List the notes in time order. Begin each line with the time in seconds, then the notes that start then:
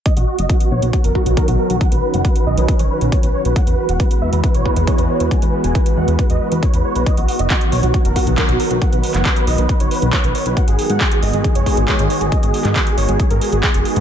0.06 D#3 F#3 B3 F#4 D#5, kick, closed hi-hat
0.17 B1 F#4, closed hi-hat
0.28 F#4
0.39 F#1 D#5, closed hi-hat
0.49 F#4, kick, closed hi-hat
0.60 F#4, closed hi-hat
0.71 B1 C#5
0.82 B1 F#4, closed hi-hat
0.93 F#4, kick, closed hi-hat
1.04 F#1 A#4, closed hi-hat
1.15 F#4, kick
1.26 B1 F#4, closed hi-hat
1.37 A#4, kick, closed hi-hat
1.48 B1 F#4, closed hi-hat
1.59 A#4
1.70 B1 F#4, closed hi-hat
1.81 C#4 F#5, kick, closed hi-hat
1.92 B1 B4, closed hi-hat
2.03 B4
2.14 F#1 F#5, closed hi-hat
2.25 B4, kick, closed hi-hat
2.36 B4, closed hi-hat
2.47 B1 D#5
2.58 B1 B4, closed hi-hat
2.68 B4, kick, closed hi-hat
2.79 F#1 C#5, closed hi-hat
2.90 B4
3.01 B1 B4, closed hi-hat
3.12 C#5, kick, closed hi-hat
3.23 B1 B4, closed hi-hat
3.34 C#5
3.45 B1 B4, closed hi-hat
3.56 E3 G#3 B3 F#5, kick, closed hi-hat
3.67 E2 B4, closed hi-hat
3.78 B4
3.89 E1 F#5, closed hi-hat
4.00 B4, kick, closed hi-hat
4.11 B4, closed hi-hat
4.22 E2 E5
4.33 E2 B4, closed hi-hat
4.44 B4, kick, closed hi-hat
4.55 B1 C#5, closed hi-hat
4.65 B4, kick
4.76 E2 B4, closed hi-hat
4.87 C#5, kick, closed hi-hat
4.98 E2 B4, closed hi-hat
5.09 C#5
5.20 E2 B4, closed hi-hat
5.31 G#5, kick, closed hi-hat
5.42 E2 B4, closed hi-hat
5.53 B4
5.64 E1 G#5, closed hi-hat
5.75 B4, kick, closed hi-hat
5.86 B4, closed hi-hat
5.97 E2 F#5
6.08 E2 B4, closed hi-hat
6.19 B4, kick, closed hi-hat
6.30 E2 D#5, closed hi-hat
6.41 B4
6.52 E2 B4, closed hi-hat
6.63 C#5, kick, closed hi-hat
6.74 E2 B4, closed hi-hat
6.85 C#5
6.96 B1 B4, closed hi-hat
7.06 D#3 F#3 B3 D#5, kick, closed hi-hat
7.17 B1 F#4, closed hi-hat
7.28 F#4, open hi-hat
7.39 F#1 D#5, closed hi-hat
7.50 F#4, kick, clap, closed hi-hat
7.61 F#4, closed hi-hat
7.72 B1 C#5, open hi-hat
7.83 B1 F#4, closed hi-hat
7.94 F#4, kick, closed hi-hat
8.05 F#1 A#4, closed hi-hat
8.16 F#4, kick, open hi-hat
8.27 B1 F#4, closed hi-hat
8.38 A#4, kick, clap, closed hi-hat
8.49 B1 F#4, closed hi-hat
8.60 A#4, open hi-hat
8.71 B1 F#4, closed hi-hat
8.82 F#5, kick, closed hi-hat
8.93 B1 B4, closed hi-hat
9.03 B4, open hi-hat
9.14 F#1 F#5, clap, closed hi-hat
9.25 B4, kick, clap, closed hi-hat
9.36 B4, closed hi-hat
9.47 B1 D#5, open hi-hat
9.58 B1 B4, closed hi-hat
9.69 B4, kick, closed hi-hat
9.80 F#1 C#5, closed hi-hat
9.91 B4, open hi-hat
10.02 B1 B4, closed hi-hat
10.13 C#5, kick, clap, closed hi-hat
10.24 B1 B4, closed hi-hat
10.35 C#5, open hi-hat
10.46 B1 B4, closed hi-hat
10.57 G#3 B3 F#4 F#5, kick, closed hi-hat
10.68 G#1 G#4, closed hi-hat
10.79 G#4, open hi-hat
10.90 G#2 F#5, closed hi-hat
11.01 G#4, kick, clap, closed hi-hat
11.12 G#4, closed hi-hat
11.22 G#1 D#5, open hi-hat
11.33 G#1 G#4, closed hi-hat
11.44 G#4, kick, closed hi-hat
11.55 F#1 C#5, closed hi-hat
11.66 G#4, kick, open hi-hat
11.77 G#1 G#4, closed hi-hat
11.88 C#5, kick, clap, closed hi-hat
11.99 G#1 G#4, closed hi-hat
12.10 C#5, open hi-hat
12.21 G#1 G#4, closed hi-hat
12.32 D#5, kick, closed hi-hat
12.43 G#1 G#4, closed hi-hat
12.54 G#4, open hi-hat
12.65 G#2 D#5, clap, closed hi-hat
12.76 G#4, kick, clap, closed hi-hat
12.87 G#4, closed hi-hat
12.98 G#1 C#5, open hi-hat
13.09 G#1 G#4, closed hi-hat
13.20 G#4, kick, closed hi-hat
13.30 G#2 A#4, closed hi-hat
13.41 G#4, open hi-hat
13.52 G#1 G#4, closed hi-hat
13.63 G#4, kick, clap, closed hi-hat
13.74 F#1 G#4, closed hi-hat
13.85 G#4, open hi-hat
13.96 G#2 G#4, closed hi-hat